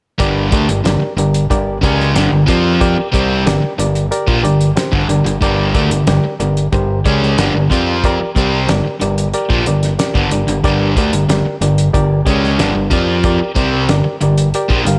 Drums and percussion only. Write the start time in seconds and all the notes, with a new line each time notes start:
0.20 kick, closed hi-hat
0.52 kick, closed hi-hat
0.69 closed hi-hat
0.85 snare, closed hi-hat
1.18 closed hi-hat
1.34 closed hi-hat
1.51 kick, closed hi-hat
1.83 kick, closed hi-hat
2.00 snare
2.16 snare, closed hi-hat
2.48 kick, closed hi-hat
2.81 kick, closed hi-hat
3.14 kick, closed hi-hat
3.47 snare, closed hi-hat
3.79 closed hi-hat
3.95 closed hi-hat
4.12 closed hi-hat
4.28 kick
4.45 closed hi-hat
4.61 closed hi-hat
4.77 snare, closed hi-hat
4.93 kick
5.09 closed hi-hat
5.26 closed hi-hat
5.42 kick, closed hi-hat
5.75 kick, closed hi-hat
5.91 closed hi-hat
6.07 snare, closed hi-hat
6.40 closed hi-hat
6.57 closed hi-hat
6.73 kick, closed hi-hat
7.06 kick, closed hi-hat
7.23 snare
7.38 snare, closed hi-hat
7.71 kick, closed hi-hat
8.04 kick, closed hi-hat
8.36 kick, closed hi-hat
8.69 snare, closed hi-hat
9.01 closed hi-hat
9.18 closed hi-hat
9.34 closed hi-hat
9.50 kick
9.66 closed hi-hat
9.83 snare, closed hi-hat
9.99 snare, closed hi-hat
10.15 kick
10.31 closed hi-hat
10.48 closed hi-hat
10.64 kick, closed hi-hat
10.97 kick, closed hi-hat
11.13 closed hi-hat
11.29 snare, closed hi-hat
11.62 closed hi-hat
11.78 closed hi-hat
11.94 kick, closed hi-hat
12.27 kick, closed hi-hat
12.44 snare
12.59 snare, closed hi-hat
12.91 kick, closed hi-hat
13.24 kick, closed hi-hat
13.56 kick, closed hi-hat
13.89 snare, closed hi-hat
14.21 closed hi-hat
14.38 closed hi-hat
14.54 closed hi-hat
14.70 kick
14.86 closed hi-hat